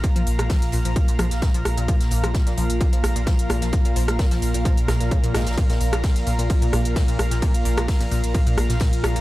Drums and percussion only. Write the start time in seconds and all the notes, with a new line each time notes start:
0.04 kick, closed hi-hat, ride
0.16 closed hi-hat, ride
0.27 open hi-hat, ride
0.39 cross-stick, closed hi-hat
0.49 kick, snare, closed hi-hat, open hi-hat
0.62 snare, closed hi-hat
0.72 open hi-hat, ride
0.85 closed hi-hat
0.96 kick, closed hi-hat, ride
1.08 closed hi-hat
1.19 cross-stick, open hi-hat, ride
1.31 snare, closed hi-hat
1.42 kick, snare, closed hi-hat, ride
1.54 closed hi-hat
1.65 cross-stick, open hi-hat, ride
1.77 closed hi-hat
1.88 kick, closed hi-hat, ride
2.01 snare, closed hi-hat
2.11 open hi-hat, ride
2.24 cross-stick, closed hi-hat
2.34 kick, snare, closed hi-hat, ride
2.47 snare, closed hi-hat
2.58 open hi-hat, ride
2.70 closed hi-hat
2.81 kick, closed hi-hat, ride
2.93 closed hi-hat
3.04 cross-stick, open hi-hat, ride
3.16 closed hi-hat
3.26 kick, snare, closed hi-hat, ride
3.39 closed hi-hat
3.49 cross-stick, open hi-hat, ride
3.62 snare, closed hi-hat
3.73 kick, closed hi-hat, ride
3.85 closed hi-hat, ride
3.96 open hi-hat, ride
4.08 cross-stick, closed hi-hat
4.19 kick, snare, closed hi-hat, open hi-hat
4.31 snare, closed hi-hat
4.42 open hi-hat, ride
4.54 closed hi-hat
4.65 kick, closed hi-hat, ride
4.77 closed hi-hat
4.88 cross-stick, snare, open hi-hat, ride
5.01 snare, closed hi-hat
5.11 kick, closed hi-hat, ride
5.24 closed hi-hat
5.34 cross-stick, snare, open hi-hat, ride
5.40 snare, ride
5.46 snare, closed hi-hat, ride
5.52 snare, ride
5.58 kick, closed hi-hat, ride
5.70 snare, closed hi-hat
5.81 open hi-hat, ride
5.93 cross-stick, closed hi-hat
6.04 kick, snare, closed hi-hat, ride
6.16 snare, closed hi-hat
6.27 open hi-hat, ride
6.39 closed hi-hat
6.50 kick, closed hi-hat, ride
6.62 closed hi-hat
6.73 cross-stick, open hi-hat, ride
6.85 closed hi-hat
6.96 kick, snare, closed hi-hat, ride
7.08 closed hi-hat
7.19 cross-stick, open hi-hat, ride
7.31 snare, closed hi-hat
7.42 kick, closed hi-hat, ride
7.54 closed hi-hat, ride
7.65 open hi-hat, ride
7.78 cross-stick, closed hi-hat
7.88 kick, snare, closed hi-hat, open hi-hat, ride
8.01 snare, closed hi-hat
8.12 open hi-hat, ride
8.24 closed hi-hat
8.34 kick, closed hi-hat, ride
8.47 closed hi-hat
8.58 cross-stick, open hi-hat, ride
8.69 snare, closed hi-hat
8.80 kick, snare, closed hi-hat, ride
8.93 closed hi-hat
9.04 cross-stick, open hi-hat, ride
9.16 closed hi-hat